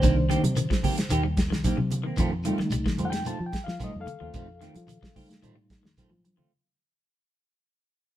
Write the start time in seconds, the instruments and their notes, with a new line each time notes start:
Already playing: reed electric piano C5
0.01 fingered electric bass C2, reed electric piano D#3 A#3 D4, clean electric guitar D#3 A#3 C4, muted clean electric guitar stroke, kick, closed hi-hat, shekere
0.16 muted clean electric guitar stroke
0.29 clean electric guitar D#3 A#3 C4 G4, closed hi-hat, low conga, shekere
0.43 fingered electric bass C3, muted clean electric guitar stroke, closed hi-hat, high conga
0.56 clean electric guitar D#3, muted clean electric guitar stroke, closed hi-hat, shekere
0.70 clean electric guitar F3, kick, snare, high conga
0.83 clean electric guitar D#3 A#3 C4 G4, kick, open hi-hat, low conga, shekere
0.98 muted clean electric guitar stroke, snare, closed hi-hat
1.09 fingered electric bass D#2, clean electric guitar D#3 A#3 G4, muted clean electric guitar stroke, closed hi-hat, high conga, shekere
1.23 clean electric guitar G3, muted clean electric guitar stroke
1.37 muted clean electric guitar stroke, kick, snare, closed hi-hat, high conga, shekere
1.50 fingered electric bass C2, clean electric guitar D#3, snare
1.64 clean electric guitar D#3 A#3 C4 G4, kick, closed hi-hat, high conga, shekere
1.77 clean electric guitar C3, fingered electric bass C3, muted clean electric guitar stroke, high conga
1.90 muted clean electric guitar stroke, closed hi-hat, low conga, shekere
2.04 clean electric guitar D#3 A#3 C4, muted clean electric guitar stroke
2.16 fingered electric bass F2, clean electric guitar D#3 A3 C4 F4, kick, closed hi-hat, shekere
2.33 muted clean electric guitar stroke
2.43 clean electric guitar C3 D#3 A3 C4 F4, reed electric piano G3 A3 D#4, closed hi-hat, low conga, shekere
2.58 clean electric guitar D#3, muted clean electric guitar stroke, muted fingered electric bass stroke, snare, high conga
2.70 fingered electric bass C2, clean electric guitar G3, muted clean electric guitar stroke, closed hi-hat, shekere
2.85 clean electric guitar D#3, kick, snare, high conga
2.98 fingered electric bass F2, clean electric guitar D#3 A3 C4 F4, closed hi-hat, high conga, low conga, shekere
3.05 reed electric piano F#5
3.10 clean electric guitar G3, reed electric piano G5, muted clean electric guitar stroke, snare, closed hi-hat
3.24 clean electric guitar D#3 A3 C4 F4, reed electric piano A5, closed hi-hat, high conga, shekere
3.39 fingered electric bass F3, muted clean electric guitar stroke
3.46 reed electric piano G5
3.52 muted clean electric guitar stroke, kick, snare, closed hi-hat, high conga, shekere
3.64 clean electric guitar F3, fingered electric bass F3, reed electric piano F5
3.68 snare
3.79 clean electric guitar D#3 A3 C4 F4, reed electric piano G3 A3 D#4, kick, closed hi-hat, high conga, shekere
3.84 reed electric piano D#5
3.93 fingered electric bass F2, muted clean electric guitar stroke, high conga
4.00 reed electric piano A4 F5
4.06 clean electric guitar D#3, muted clean electric guitar stroke, closed hi-hat, low conga, shekere
4.20 fingered electric bass D#2, clean electric guitar F3 A3 C4 F4
4.34 fingered electric bass F2, clean electric guitar D#3 A3 C4 F4, kick, closed hi-hat, shekere
4.49 muted clean electric guitar stroke
4.61 clean electric guitar D#3 A3 C4 F4, snare, closed hi-hat, shekere
4.75 fingered electric bass F3, muted clean electric guitar stroke, closed hi-hat, high conga
4.87 clean electric guitar D#3, muted clean electric guitar stroke, closed hi-hat, high conga, low conga, shekere
5.03 clean electric guitar F3, kick, snare, high conga
5.15 clean electric guitar D#3 A3 C4 F4, reed electric piano G3 A3 D#4, kick, open hi-hat, low conga, shekere
5.29 muted clean electric guitar stroke, snare, closed hi-hat
5.42 fingered electric bass A2, clean electric guitar D#3 A3 C4 F4, closed hi-hat, shekere
5.56 clean electric guitar G3, muted clean electric guitar stroke
5.70 muted clean electric guitar stroke, kick, snare, closed hi-hat, high conga, shekere
5.83 fingered electric bass F2, clean electric guitar D#3, snare
5.97 clean electric guitar D#3 A3 C4 F4, kick, snare, closed hi-hat, high conga, shekere
6.10 clean electric guitar A2, fingered electric bass F3, muted clean electric guitar stroke, high conga
6.24 muted clean electric guitar stroke, closed hi-hat, high conga, shekere
6.37 clean electric guitar D#3 A3 C4 F4, low conga